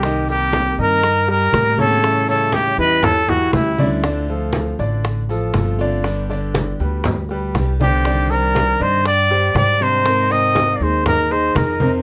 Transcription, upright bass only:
\new Staff \with { instrumentName = "Upright bass" } { \clef bass \time 4/4 \key c \minor \tempo 4 = 120 c,4. g,4. a,4~ | a,4. e,4. d,4~ | d,4. a,,4. g,,4~ | g,,4. d,4. c,4~ |
c,4. g,4. aes,4~ | aes,4. ees,4. f,4 | }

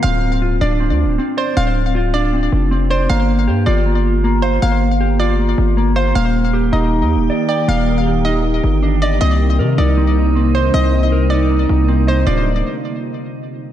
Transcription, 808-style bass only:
\new Staff \with { instrumentName = "808-style bass" } { \clef bass \time 4/4 \key d \phrygian \tempo 4 = 157 d,,4. d,,8. d,16. d,,16. r4 | d,,2~ d,,8 f,,4. | g,,4 g,8 g,,2~ g,,8 | g,,2~ g,,8 g,,4. |
ees,,4. ees,,8. ees,16. ees,,16. r4 | ees,,2~ ees,,8 g,,4. | c,4 c8 c,2~ c,8 | c,2~ c,8 c,4. |
d,,4 r2. | }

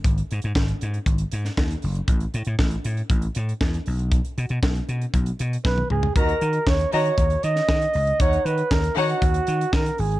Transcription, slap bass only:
\new Staff \with { instrumentName = "Slap bass" } { \clef bass \time 4/4 \key dis \phrygian \tempo 4 = 118 gis,,8 gis,16 gis,16 gis,,8 gis,8 gis,,8 gis,8 dis,8 fis,,8 | a,,8 a,16 a,16 a,,8 a,8 a,,8 a,8 e,8 b,,8~ | b,,8 b,16 b,16 b,,8 b,8 b,,8 b,8 b,,8 cis,8 | dis,8 dis8 dis,8 dis8 dis,8 dis8 dis8 cis,8 |
dis,8 dis8 dis,8 dis8 dis,8 dis8 dis8 gis,,8 | }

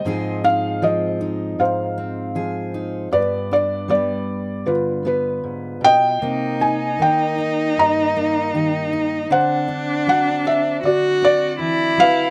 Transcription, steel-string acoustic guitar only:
\new Staff \with { instrumentName = "Steel-string acoustic guitar" } { \time 4/4 \key c \minor \tempo 4 = 78 << { <f c' ees' aes'>8 ees'8 c'8 ees'4 c'8 aes'8 ees'8 | b8 d'8 b4. b4. | bes8 ees'8 bes8 ees'4 bes8 g'8 ees'8 | c'8 d'8 c'8 d'4 c'4. | } \\ { aes,4 f4 aes,4 f4 | g,4 g4 d4 aes,8 b,8 | c4 ees4 g,4 ees4 | d4 fis4 d4 e8 fis8 | } >> }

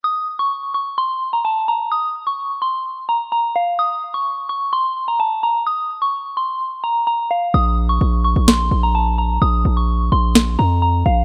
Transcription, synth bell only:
\new Staff \with { instrumentName = "Synth bell" } { \time 4/4 \key bes \minor \tempo 4 = 128 ees'''8. des'''8. des'''8 c'''8. bes''16 a''8 bes''8 | ees'''8. des'''8. c'''4 bes''8 bes''8 f''8 | ees'''8. des'''8. des'''8 c'''8. bes''16 a''8 bes''8 | ees'''8. des'''8. c'''4 bes''8 bes''8 f''8 |
ees'''8. des'''8. des'''8 c'''8. bes''16 a''8 bes''8 | ees'''8. des'''8. c'''4 bes''8 bes''8 f''8 | }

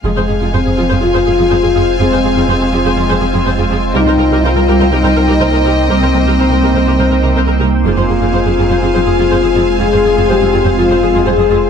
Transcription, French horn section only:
\new Staff \with { instrumentName = "French horn section" } { \time 4/4 \key f \minor \tempo 4 = 123 aes4 c'4 f'2 | c'4 c'2~ c'8 r8 | ees'4 f'4 ees'2 | c'2.~ c'8 r8 |
f'2 f'2 | aes'4 g'4 f'4 aes'4 | }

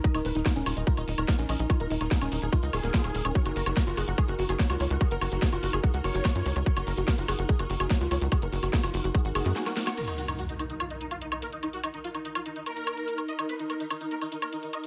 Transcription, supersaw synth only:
\new Staff \with { instrumentName = "Supersaw synth" } { \time 4/4 \key ees \minor \tempo 4 = 145 ees''16 ees'16 ces''16 ees'16 bes'16 ees'16 ees'16 ees'16 bes'16 ees'16 ees'16 bes'16 ees'16 ees'16 ees''16 ees'16 | ees'16 bes'16 ees'16 ees'16 aes'16 ees'16 ees'16 aes'16 ees'16 ees'16 aes'4~ aes'16 r16 | des''16 ges'16 bes'16 ges'16 bes'16 ges'16 ges'16 ges'16 aes'16 ges'16 ges'16 aes'16 ges'16 ges'16 des''16 ges'16 | ges'16 bes'16 ges'16 ges'16 aes'16 ges'16 ges'16 aes'16 ges'16 ges'16 des''4~ des''16 r16 |
des''16 ges'16 bes'16 ges'16 bes'16 ges'16 ges'16 ges'16 aes'16 ges'16 ges'16 aes'16 ges'16 ges'16 des''16 ges'16 | ges'16 bes'16 ges'16 ges'16 aes'16 ges'16 ges'16 ges'16 ges'16 ges'16 ges'4~ ges'16 r16 | bes'16 ees'16 ges'16 ees'16 ges'16 ees'16 ees'16 ees'16 f'16 ees'16 ees'16 f'16 ees'16 ees'16 bes'16 ees'16 | ees'16 ges'16 ees'16 ees'16 f'16 ees'16 ees'16 f'16 ees'16 ees'16 bes'4~ bes'16 r16 |
ees''16 ees'16 ces''16 ees'16 bes'16 ees'16 ees'16 ees'16 bes'16 ees'16 ees'16 bes'16 ees'16 ees'16 ees''16 ees'16 | }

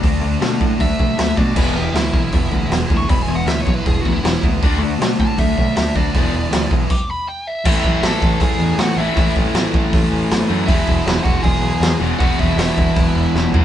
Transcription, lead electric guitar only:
\new Staff \with { instrumentName = "Lead electric guitar" } { \time 4/4 \key e \mixolydian \tempo 4 = 158 r2 e''4. d''8 | b'8 g'8 e'2 \tuplet 3/2 { r4 cis'''8 } | \tuplet 3/2 { b''8 gis''8 fis''8 e''8 cis''8 b'8 gis'8 fis'8 e'8 } e'8 r8 | r4. a''8 e''4 e''8 d''8~ |
d''4. r8 d'''8 b''8 g''8 e''8 | \key a \lydian <e' e''>4 <a' a''>4 <gis' gis''>4 <fis' fis''>8 <e' e''>8~ | <e' e''>8 r2. r8 | <e' e''>4. <fis' fis''>8 <gis' gis''>4. r8 |
<fis' fis''>8 <e' e''>8 <e' e''>2~ <e' e''>8 r8 | }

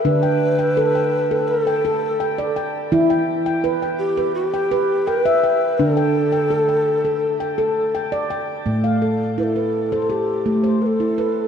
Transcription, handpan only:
<<
  \new Staff \with { instrumentName = "Handpan" } { \time 4/4 \key a \minor \tempo 4 = 84 << { r16 g''8 g''8 g''8. r16 g''8. g''8 g''8~ | g''16 g''8 g''8 g''8. r16 g''8. g''8 g''8~ | g''16 g''8 g''8 g''8. r16 g''8. g''8 g''8~ | g''16 f''16 a'8. b'8 c''16 a'8. c''8. b'8 | } \\ { d'8 r8 a'8 r16 a'8 r16 a'8 r16 d''8 r16 | e'8 r8 b'8 r16 b'8 r16 b'8 r16 e''8 r16 | d'8 r8 a'8 r16 a'8 r16 a'8 r16 d''8 r16 | a8 r8 e'8 r16 a'8 r16 a8 r16 e'8 r16 | } >> }
  \new Staff \with { instrumentName = "Handpan" } { \clef bass \time 4/4 \key a \minor d1 | e1 | d1 | a,1 | }
>>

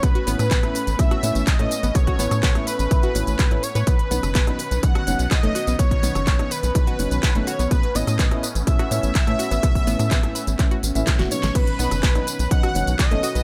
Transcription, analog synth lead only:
\new Staff \with { instrumentName = "Analog synth lead" } { \time 4/4 \key a \lydian \tempo 4 = 125 b'2 e''4 dis''4 | cis''4. b'2 cis''8 | b'2 fis''4 dis''4 | cis''4. b'2 cis''8 |
b'8 dis''4 r8 e''2~ | e''2. r8 cis''8 | b'2 fis''4 dis''4 | }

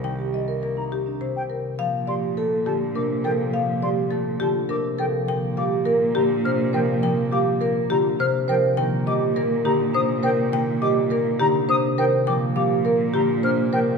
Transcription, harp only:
\new Staff \with { instrumentName = "Harp" } { \clef bass \time 3/4 \key c \minor \tempo 4 = 103 <c ees g bes c'>8 g8 bes4 c4 | \key bes \major f8 g8 a8 d8 c8 f8 | f8 g8 a8 d8 c8 f8 | f8 g8 bes8 d8 c8 f8 |
f8 g8 bes8 d8 c8 f8 | ees8 g8 bes8 d8 c8 ees8 | ees8 g8 bes8 d8 c8 ees8 | f8 g8 bes8 d8 c8 f8 | }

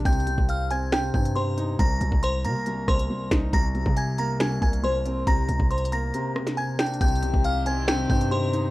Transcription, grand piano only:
\new Staff \with { instrumentName = "Grand piano" } { \clef bass \time 4/4 \key c \minor \tempo 4 = 138 c8 c4 c'8 c8 c8 c8 ees'8 | c,8 c,4 bes8 c,8 c,8 c,8 ees'8 | c,8 c,4 bes8 c,8 c,8 c,8 c'8 | c8 c4 bes8 c8 c8 c8 d'8 |
c8 c4 c'8 c8 c8 c8 ees'8 | }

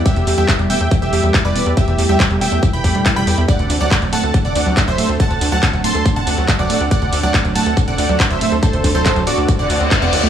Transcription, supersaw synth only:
\new Staff \with { instrumentName = "Supersaw synth" } { \time 4/4 \key d \mixolydian \tempo 4 = 140 <g' e''>8 r16 <g' e''>8 r16 <e'' g''>8 r16 <g' e''>8. r16 <b' d''>8 r16 | <g' e''>8 r16 <g' e''>8 r16 <e'' g''>8 r16 <g'' b''>8. r16 <g'' b''>8 r16 | <d'' fis''>8 r16 <d'' fis''>8 r16 <fis'' a''>8 r16 <d'' fis''>8. r16 <c'' e''>8 r16 | <fis'' a''>8 r16 <fis'' a''>8 r16 <a'' c'''>8 r16 <fis'' a''>8. r16 <d'' fis''>8 r16 |
<d'' fis''>8 r16 <d'' fis''>8 r16 <fis'' a''>8 r16 <d'' fis''>8. r16 <c'' e''>8 r16 | <a' c''>8 r16 <a' c''>8 r16 <fis' d''>8 r16 <d'' fis''>8. r16 <d'' fis''>8 r16 | }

